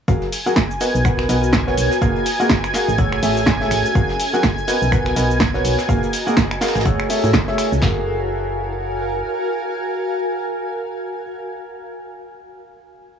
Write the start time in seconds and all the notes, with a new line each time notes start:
0.08 F#1 F#3 F#4 G#4 A#4 F5 G#5, kick, closed hi-hat, shaker
0.22 snare
0.32 closed hi-hat, open hi-hat, shaker
0.42 F5 G#5
0.46 F#3 F#4 G#4 A#4 F#5, closed hi-hat, shaker
0.56 kick, snare, closed hi-hat, shaker
0.70 closed hi-hat, shaker
0.80 B3 F#4 A#4 B4 D#5, closed hi-hat, open hi-hat, shaker
0.95 B1, shaker
0.99 B4
1.05 B3 F#4 A#4 B4 F#5, finger snap, kick, closed hi-hat, shaker
1.19 finger snap, snare
1.29 B1 B3 F#4 A#4 B4 D#5, closed hi-hat, open hi-hat, shaker
1.36 A#5
1.44 shaker
1.53 kick, snare, closed hi-hat, shaker
1.67 B3 F#4 A#4 B4 C#5, snare
1.77 B1, closed hi-hat, open hi-hat, shaker
1.91 snare, shaker
2.02 A#1 A#3 F#4 G#4 A#4 F5, kick, closed hi-hat, shaker
2.16 closed hi-hat
2.26 closed hi-hat, open hi-hat, shaker
2.40 A#3 F#4 G#4 A#4 F#5, shaker
2.46 G#5, snare
2.50 kick, snare, closed hi-hat, shaker
2.64 finger snap, shaker
2.74 F#4 G#4 A#4 F5, snare, closed hi-hat, open hi-hat, shaker
2.88 A1, shaker
2.98 A3 C#4 G#4 A4 C#5 F#5, kick, closed hi-hat, shaker
3.06 A4
3.12 finger snap
3.22 A1 A3 G#4 A4 C#5 E5, open hi-hat, shaker
3.37 snare, shaker
3.46 kick, snare, closed hi-hat, shaker
3.61 A3 G#4 A4 C#5 E5, snare
3.71 A1, finger snap, closed hi-hat, open hi-hat, shaker
3.86 shaker
3.95 F#1 F#3 F#4 G#4 A#4 F5, kick, closed hi-hat, shaker
4.09 snare
4.20 F5, closed hi-hat, open hi-hat, shaker
4.33 F#3 F#4 G#4 A#4 F#5, closed hi-hat, shaker
4.43 kick, snare, closed hi-hat, shaker
4.58 closed hi-hat, shaker
4.67 B3 F#4 A#4 B4 D#5, closed hi-hat, open hi-hat, shaker
4.82 B1, shaker
4.88 B4
4.92 B3 F#4 A#4 B4 F#5, finger snap, kick, closed hi-hat, shaker
5.05 A#5, finger snap, snare
5.16 B1 B3 F#4 A#4 B4 D#5, closed hi-hat, open hi-hat, shaker
5.31 shaker
5.40 kick, snare, closed hi-hat, shaker
5.54 B3 F#4 A#4 B4 C#5, snare
5.64 B1, closed hi-hat, open hi-hat, shaker
5.78 snare, shaker
5.89 A#1 A#3 F#4 G#4 A#4 F5, kick, closed hi-hat, shaker
6.03 closed hi-hat, shaker
6.09 A#4 F5
6.13 closed hi-hat, open hi-hat, shaker
6.27 A#3 F#4 G#4 A#4 F#5, shaker
6.33 G#5, snare
6.37 kick, closed hi-hat, shaker
6.51 finger snap, shaker
6.61 F#4 G#4 A#4 F5, snare, closed hi-hat, open hi-hat, shaker
6.68 snare, closed hi-hat
6.75 A1, snare, closed hi-hat, shaker
6.80 snare, closed hi-hat
6.85 E1 A3 E4 G#4 A4 C#5 F#5, kick, closed hi-hat, shaker
6.95 A4
7.00 finger snap
7.09 A3 G#4 A4 C#5 E5, open hi-hat, shaker
7.23 A2, snare, shaker
7.33 kick, snare, closed hi-hat, shaker
7.48 A3 G#4 A4 C#5 E5, snare
7.58 finger snap, closed hi-hat, open hi-hat, shaker
7.72 C#2, shaker
7.82 F#1 F#4 G#4 A#4 F5, kick, snare, clap
7.91 A#4
7.98 F5
8.04 G#5